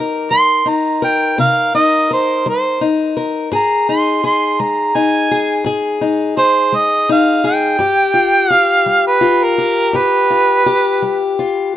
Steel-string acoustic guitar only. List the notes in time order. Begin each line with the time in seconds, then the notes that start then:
Already playing: D#4 A#4
0.31 G3
0.65 D#4
1.02 A#4
1.38 C3 A#4
1.74 D#4
2.11 A#4
2.46 G3
2.81 D#4
3.17 A#4
3.51 G#2 G#4
3.89 D#4
4.24 G#4
4.60 G#3
4.95 D#4
5.31 G#4
5.64 G#2 G#4
6.01 D#4
6.37 G#4
6.72 G#3
7.09 D#4
7.44 G#4
7.79 G2 G4
8.14 F4
8.50 G4
8.86 G3
9.21 F4
9.58 G4
9.93 G2 G4
10.30 F4
10.66 G4
11.02 G3
11.39 F4